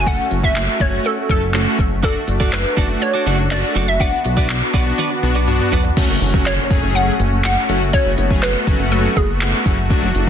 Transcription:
Already playing: analog synth bass F#1, supersaw synth A3 C#4 F#4, downlifter
0.06 analog polysynth A3 C#4 A4, synth pluck F#5, kick, closed hi-hat
0.31 analog synth bass F#1, closed hi-hat
0.43 analog polysynth A3 C#4 F#4, synth pluck E5, kick
0.56 snare, clap, closed hi-hat
0.80 analog synth bass F#1, analog polysynth A3 C#4 F#4, synth pluck C#5, kick, closed hi-hat
1.05 synth pluck A4, closed hi-hat
1.29 analog synth bass F#1, analog polysynth A3 C#4 A4, synth pluck A4, kick, closed hi-hat
1.54 analog polysynth A3 C#4 F#4, snare, clap, closed hi-hat
1.79 analog synth bass F#1, kick, closed hi-hat
2.03 analog polysynth A3 D4 F#4, clean electric guitar D4 F#4 A4 D5, supersaw synth D4 F#4, synth pluck A4, kick, closed hi-hat
2.15 muted clean electric guitar stroke
2.28 analog synth bass F#1, muted clean electric guitar stroke, closed hi-hat
2.40 analog polysynth A3 D4 F#4, clean electric guitar D4 F#4 A4 D5, kick
2.53 synth pluck B4, snare, clap, closed hi-hat
2.65 muted clean electric guitar stroke
2.77 analog synth bass F#1, analog polysynth A3 D4 F#4, clean electric guitar D4 F#4 A4 D5, kick, closed hi-hat
2.89 muted clean electric guitar stroke
3.02 synth pluck C#5, muted clean electric guitar stroke, closed hi-hat
3.14 clean electric guitar D4 F#4 A4 D5
3.26 analog synth bass F#1, analog polysynth A3 D4 F#4, clean electric guitar D4 F#4 A4 D5, closed hi-hat
3.39 muted clean electric guitar stroke
3.51 analog polysynth A3 D4 F#4, synth pluck D5, snare, clap, closed hi-hat
3.63 muted clean electric guitar stroke
3.75 analog synth bass F#1, clean electric guitar D4 F#4 A4 D5, closed hi-hat
3.88 synth pluck E5, muted clean electric guitar stroke
4.00 analog polysynth B3 D4 F#4, supersaw synth B3 D4, clean electric guitar D4 F#4 B4 D5, synth pluck F#5, kick, closed hi-hat
4.12 muted clean electric guitar stroke
4.24 analog synth bass B1, muted clean electric guitar stroke, closed hi-hat
4.37 analog polysynth B3 D4 F#4, clean electric guitar D4 F#4 B4 D5, kick
4.50 snare, clap, closed hi-hat
4.61 muted clean electric guitar stroke
4.74 analog synth bass B1, analog polysynth B3 D4 F#4, clean electric guitar D4 F#4 B4 D5, kick, closed hi-hat
4.86 muted clean electric guitar stroke
4.98 clean electric guitar D4 F#4 B4 D5, closed hi-hat, high tom
5.11 muted clean electric guitar stroke
5.23 analog synth bass B1, analog polysynth B3 D4 F#4, muted clean electric guitar stroke, closed hi-hat, mid tom
5.35 clean electric guitar D4 F#4 B4 D5
5.47 analog polysynth B3 D4 F#4, closed hi-hat, mid tom
5.60 muted clean electric guitar stroke, mid tom
5.72 analog synth bass B1, clean electric guitar D4 F#4 B4 D5, closed hi-hat, floor tom
5.84 muted clean electric guitar stroke, floor tom
5.96 analog polysynth F#3 A3 C#4 F#4, supersaw synth A3 C#4 F#4, kick, closed hi-hat, crash, impact
6.09 analog synth bass F#1
6.21 analog synth bass F#1, closed hi-hat
6.33 analog polysynth F#3 A3 C#4 F#4, kick
6.46 synth pluck C#5, snare, clap, closed hi-hat
6.70 analog synth bass F#1, analog polysynth F#3 A3 C#4 G#4, kick, closed hi-hat
6.83 analog synth bass F#1
6.95 synth pluck F#5, closed hi-hat
7.20 analog synth bass F#1, closed hi-hat
7.44 synth pluck F#5, snare, clap, closed hi-hat
7.57 analog polysynth C#4 F#4
7.69 analog synth bass F#1, analog polysynth F#3 A3 C#4 F#4, closed hi-hat
7.93 analog polysynth F#3 A3 C#4 F#4, supersaw synth B3, synth pluck C#5, kick, closed hi-hat
8.06 analog synth bass F#1
8.18 analog synth bass F#1, closed hi-hat
8.30 analog polysynth F#3 A3 C#4 G#4, kick
8.43 synth pluck B4, snare, clap, closed hi-hat
8.67 analog synth bass F#1, analog polysynth F#3 A3 C#4 F#4, kick, closed hi-hat
8.80 analog synth bass F#1
8.92 synth pluck A4, closed hi-hat
9.16 analog synth bass F#1, synth pluck G#4, kick, closed hi-hat
9.41 snare, clap, closed hi-hat
9.53 analog polysynth C#4 F#4
9.66 analog synth bass F#1, analog polysynth F#3 A3 C#4 F#4, kick, closed hi-hat
9.90 analog polysynth F#3 A3 D4 F#4, supersaw synth D4, kick, closed hi-hat
10.03 analog synth bass F#1
10.15 analog synth bass F#1, closed hi-hat

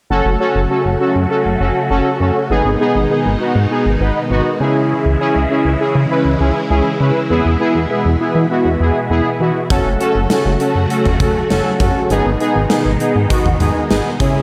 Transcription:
0.10 analog synth bass F#1, string machine C#3 F#3 A3 F#4, analog polysynth C#4 F#4 A4
0.25 analog synth bass F#1
0.40 analog polysynth C#4 F#4 A4
0.55 analog synth bass F#1
0.70 analog polysynth C#4 F#4 A4
0.85 analog synth bass F#1
1.00 analog polysynth C#4 F#4 A4
1.15 analog synth bass F#2
1.30 analog polysynth C#4 F#4 A4
1.45 analog synth bass F#1
1.60 analog synth bass F#1, analog polysynth C#4 F#4 A4
1.90 analog synth bass F#1, analog polysynth C#4 F#4 A4
2.20 analog synth bass F#2, analog polysynth C#4 F#4 A4
2.50 analog synth bass G#1, string machine B2 D#3 G#3 D#4, analog polysynth B3 D#4 G#4
2.65 analog synth bass G#1
2.80 analog polysynth B3 D#4 G#4
2.95 analog synth bass G#1
3.10 analog polysynth B3 D#4 G#4
3.25 analog synth bass G#1
3.40 analog polysynth B3 D#4 F#4
3.55 analog synth bass G#2
3.71 analog polysynth B3 D#4 G#4
3.85 analog synth bass G#1
4.00 analog synth bass G#1, analog polysynth B3 D#4 B4
4.30 analog synth bass G#1, analog polysynth B3 D#4 F#4
4.60 analog synth bass C#3, string machine C#3 E3 E4, analog polysynth C#4 E4 G#4
5.05 analog synth bass C#2
5.20 analog polysynth C#4 E4 G#4
5.35 analog synth bass C#2
5.50 analog polysynth C#4 E4 G#4
5.65 analog synth bass C#2
5.80 analog polysynth C#4 E4 G#4
5.95 analog synth bass C#3
6.11 analog polysynth C#4 E4 B4
6.25 analog synth bass C#2
6.40 analog synth bass C#2, analog polysynth C#4 E4 G#4
6.70 analog synth bass C#2, analog polysynth C#4 E4 G#4
7.00 analog synth bass C#3, analog polysynth C#4 E4 B4
7.30 analog synth bass E2, string machine B2 E3, analog polysynth B3 E4 G#4
7.45 analog synth bass E2
7.60 analog polysynth B3 E4 G#4
7.75 analog synth bass E2
7.90 analog polysynth B3 E4 G#4
8.05 analog synth bass E2
8.20 analog polysynth B3 E4 G#4
8.35 analog synth bass E3
8.50 analog polysynth B3 E4 F#4
8.65 analog synth bass E2
8.80 analog synth bass E2, analog polysynth B3 E4 G#4
9.10 analog synth bass E2, analog polysynth B3 E4 G#4
9.40 analog synth bass E3, analog polysynth B3 E4 F#4
9.70 analog synth bass F#1, string machine C#3 F#3 A3 F#4, analog polysynth C#4 F#4 A4, kick, closed hi-hat
9.85 analog synth bass F#1
10.00 analog polysynth C#4 F#4 A4, closed hi-hat
10.15 analog synth bass F#1
10.30 analog polysynth C#4 F#4 A4, snare, closed hi-hat
10.45 analog synth bass F#1
10.60 analog polysynth C#4 F#4 A4, closed hi-hat
10.75 analog synth bass F#2
10.90 analog polysynth C#4 F#4 A4, closed hi-hat
11.05 analog synth bass F#1, mid tom
11.20 analog synth bass F#1, analog polysynth C#4 F#4 A4, kick, closed hi-hat, mid tom
11.50 analog synth bass F#1, analog polysynth C#4 F#4 A4, snare, closed hi-hat
11.80 analog synth bass F#2, analog polysynth C#4 F#4 A4, kick, closed hi-hat
12.10 analog synth bass G#1, string machine B2 D#3 G#3 D#4, analog polysynth B3 D#4 G#4, closed hi-hat
12.25 analog synth bass G#1
12.40 analog polysynth B3 D#4 G#4, closed hi-hat
12.56 analog synth bass G#1
12.70 analog polysynth B3 D#4 G#4, snare, closed hi-hat
12.85 analog synth bass G#1
13.00 analog polysynth B3 D#4 G#4, closed hi-hat
13.15 analog synth bass G#2
13.30 analog polysynth B3 D#4 F#4, kick, closed hi-hat
13.45 analog synth bass G#1, mid tom
13.60 analog synth bass G#1, analog polysynth B3 D#4 G#4, closed hi-hat, mid tom
13.90 analog synth bass G#1, analog polysynth B3 D#4 G#4, snare, closed hi-hat
14.20 analog synth bass C#3, string machine C#3 E3 E4, analog polysynth C#4 E4 G#4, kick, closed hi-hat

